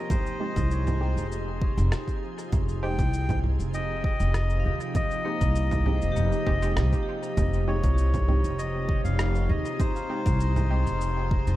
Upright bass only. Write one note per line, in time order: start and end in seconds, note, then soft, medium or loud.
0.56 1.14 C2 loud
1.17 1.74 F1 medium
1.77 1.90 F1 medium
2.53 2.96 F1 medium
2.99 3.56 C2 medium
3.59 4.17 F1 medium
4.20 4.66 F1 medium
4.65 4.79 D#2 medium
5.41 5.99 C2 loud
6.02 6.16 F1 medium
6.16 6.30 F1 medium
6.47 6.78 F1 medium
6.77 6.91 C2 medium
7.37 7.81 F1 medium
7.84 8.41 C2 loud
8.44 9.02 F1 medium
9.05 9.51 F1 medium
9.49 9.63 D#2 medium
10.26 10.84 C2 loud
10.87 11.44 F1 medium
11.47 11.56 F1 loud